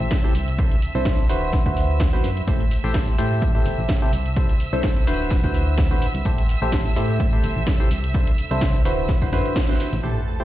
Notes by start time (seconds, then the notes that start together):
Already playing: A3 E4 G4 A4 C5 E5 E6
0.00 A1
0.11 kick, snare, closed hi-hat
0.24 C3 E4 G4 A4 C5
0.35 C2, open hi-hat
0.48 closed hi-hat
0.59 C3 D4 E4 A4 C5, kick, closed hi-hat
0.71 closed hi-hat
0.82 open hi-hat
0.95 C2 C3 D4 E4 A4 C5
1.05 kick, snare, closed hi-hat
1.19 closed hi-hat
1.29 D1 D3 E4 F#4 B4 C5, open hi-hat
1.53 kick, snare, closed hi-hat
1.66 D2 D3 E4 F#4 B4 C5, kick
1.77 open hi-hat
2.00 kick, snare, closed hi-hat
2.13 A1 D3 E4 F#4 B4 C5, closed hi-hat
2.24 F#2, open hi-hat
2.37 closed hi-hat
2.48 A1 A3 E4 G4 A4 C5 E5 E6, kick, closed hi-hat
2.60 closed hi-hat
2.71 snare, closed hi-hat, open hi-hat
2.84 A1 A3 E4 G4 A4 C5
2.94 kick, snare, closed hi-hat
3.08 closed hi-hat
3.18 A2 A3 E4 G4 A4 C5, closed hi-hat, open hi-hat
3.31 snare
3.42 kick, closed hi-hat
3.55 A3 E4 G4 A4 C5
3.66 G1, closed hi-hat, open hi-hat
3.78 A1
3.89 kick, snare, closed hi-hat
4.02 C3 E4 G4 A4 C5, snare
4.13 C2, closed hi-hat, open hi-hat
4.26 closed hi-hat
4.36 C3 D4 E4 A4 C5, kick, closed hi-hat
4.49 closed hi-hat
4.60 closed hi-hat, open hi-hat
4.73 C2 C3 D4 E4 A4 C5
4.83 kick, snare, closed hi-hat
4.85 snare
4.96 snare, closed hi-hat
5.07 D1 D3 E4 F#4 B4 C5, closed hi-hat, open hi-hat
5.20 snare
5.30 kick, snare, closed hi-hat
5.44 D2 D3 E4 F#4 B4 C5, kick
5.54 closed hi-hat, open hi-hat
5.78 kick, snare, closed hi-hat
5.91 A1 D3 E4 F#4 B4 C5
6.02 closed hi-hat, open hi-hat
6.15 C2, closed hi-hat
6.25 A1 A3 E4 G4 A4 C5, kick, closed hi-hat
6.38 closed hi-hat
6.49 snare, closed hi-hat, open hi-hat
6.62 A1 A3 E4 G4 A4 C5
6.72 kick, snare, closed hi-hat
6.86 closed hi-hat
6.96 A2 A3 E4 G4 A4 C5, closed hi-hat, open hi-hat
7.09 snare
7.20 kick, closed hi-hat
7.33 A3 E4 G4 A4 C5
7.43 G1, closed hi-hat, open hi-hat
7.56 A1
7.67 kick, snare, closed hi-hat
7.80 C3 E4 G4 A4 C5, snare
7.90 C2, closed hi-hat, open hi-hat
8.04 closed hi-hat
8.14 C3 D4 E4 A4 C5, kick, closed hi-hat
8.27 closed hi-hat
8.38 closed hi-hat, open hi-hat
8.51 C2 C3 D4 E4 A4 C5, closed hi-hat
8.61 kick, snare, closed hi-hat
8.74 snare, closed hi-hat
8.85 D1 D3 E4 F#4 B4 C5, closed hi-hat, open hi-hat
8.98 snare
9.09 kick, snare, closed hi-hat
9.22 D3 E4 F#4 B4 C5, kick
9.32 F#2 D3 E4 F#4 B4 C5, closed hi-hat, open hi-hat
9.46 closed hi-hat
9.56 kick, snare, closed hi-hat
9.62 snare, closed hi-hat
9.69 D3 E4 F#4 B4 C5, snare, closed hi-hat
9.74 snare, closed hi-hat
9.80 snare, closed hi-hat, open hi-hat
9.93 A1, closed hi-hat
10.03 A1 A3 E4 G4 A4 C5 A5, sub drop
10.40 A3 E4 G4 A4 C5